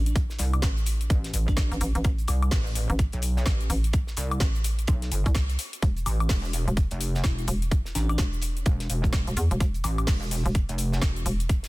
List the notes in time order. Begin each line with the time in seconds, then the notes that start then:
Already playing: A1
0.06 D4, closed hi-hat, shaker
0.16 kick, closed hi-hat, shaker
0.30 snare, shaker
0.39 C2, snare, closed hi-hat, open hi-hat, shaker
0.54 closed hi-hat, high woodblock, shaker
0.62 A1, kick, snare, closed hi-hat, shaker
0.77 closed hi-hat, shaker
0.86 closed hi-hat, open hi-hat, shaker
1.01 closed hi-hat, shaker
1.10 A1, kick, closed hi-hat, shaker
1.24 snare, closed hi-hat
1.33 A1, closed hi-hat, open hi-hat, shaker
1.48 D4, kick, closed hi-hat, shaker
1.57 kick, snare, closed hi-hat, shaker
1.72 A1, closed hi-hat, shaker
1.81 A1, closed hi-hat, open hi-hat, shaker
1.95 A1, closed hi-hat, shaker
2.04 A1, kick, closed hi-hat, shaker
2.18 closed hi-hat, shaker
2.28 C2, closed hi-hat, open hi-hat, high woodblock, shaker
2.42 closed hi-hat, high woodblock, shaker
2.51 A1, kick, snare, closed hi-hat, open hi-hat, shaker
2.66 shaker
2.75 closed hi-hat, open hi-hat, shaker
2.90 A1, closed hi-hat, shaker
2.99 kick, closed hi-hat, shaker
3.12 B1, closed hi-hat
3.22 closed hi-hat, open hi-hat, shaker
3.37 snare, shaker
3.46 A1, kick, snare, closed hi-hat, shaker
3.61 closed hi-hat, shaker
3.70 A1, closed hi-hat, open hi-hat, shaker
3.84 closed hi-hat, shaker
3.93 kick, closed hi-hat, shaker
4.07 snare, shaker
4.17 C2, snare, closed hi-hat, open hi-hat, shaker
4.31 closed hi-hat, high woodblock, shaker
4.40 A1, kick, snare, closed hi-hat, shaker
4.55 closed hi-hat, shaker
4.64 closed hi-hat, open hi-hat, shaker
4.79 closed hi-hat, shaker
4.87 B1, kick, closed hi-hat, shaker
5.02 snare, closed hi-hat
5.11 G1, closed hi-hat, open hi-hat, shaker
5.26 C2, kick, closed hi-hat, shaker
5.35 kick, snare, closed hi-hat, shaker
5.49 closed hi-hat, shaker
5.59 closed hi-hat, open hi-hat, shaker
5.73 closed hi-hat, shaker
5.82 E1, kick, closed hi-hat, shaker
5.97 closed hi-hat, shaker
6.06 A1, closed hi-hat, open hi-hat, high woodblock, shaker
6.20 closed hi-hat, high woodblock, shaker
6.29 E1, kick, snare, closed hi-hat, open hi-hat, shaker
6.44 shaker
6.53 closed hi-hat, open hi-hat, shaker
6.68 E1, closed hi-hat, shaker
6.77 kick, closed hi-hat, shaker
6.91 F1, closed hi-hat
7.01 closed hi-hat, open hi-hat, shaker
7.15 snare, shaker
7.24 E1 E4, kick, snare, closed hi-hat, shaker
7.38 E4, closed hi-hat, shaker
7.48 E1, closed hi-hat, open hi-hat, shaker
7.62 closed hi-hat, shaker
7.71 kick, closed hi-hat, shaker
7.85 snare, shaker
7.95 A1 D4, snare, closed hi-hat, open hi-hat, shaker
8.09 D4, closed hi-hat, high woodblock, shaker
8.18 E1, kick, snare, closed hi-hat, shaker
8.33 closed hi-hat, shaker
8.42 closed hi-hat, open hi-hat, shaker
8.57 closed hi-hat, shaker
8.66 E1, kick, closed hi-hat, shaker
8.80 snare, closed hi-hat
8.90 E1, closed hi-hat, open hi-hat, shaker
9.04 kick, closed hi-hat, shaker
9.13 kick, snare, closed hi-hat, shaker
9.27 E1, closed hi-hat, shaker
9.37 E2, closed hi-hat, open hi-hat, shaker
9.51 E1, closed hi-hat, shaker
9.60 E1, kick, closed hi-hat, shaker
9.74 closed hi-hat, shaker
9.84 A1, closed hi-hat, open hi-hat, high woodblock, shaker
9.98 closed hi-hat, high woodblock, shaker
10.07 E1, kick, snare, closed hi-hat, open hi-hat, shaker
10.22 shaker
10.31 open hi-hat, shaker
10.46 E1, closed hi-hat, shaker
10.55 kick, closed hi-hat, shaker
10.69 F1, closed hi-hat
10.78 closed hi-hat, open hi-hat, shaker
10.92 snare, shaker
11.02 E1, kick, snare, closed hi-hat, shaker
11.16 closed hi-hat, shaker
11.26 E1, closed hi-hat, open hi-hat, shaker
11.40 closed hi-hat, shaker
11.49 kick, closed hi-hat, shaker
11.63 snare, closed hi-hat, shaker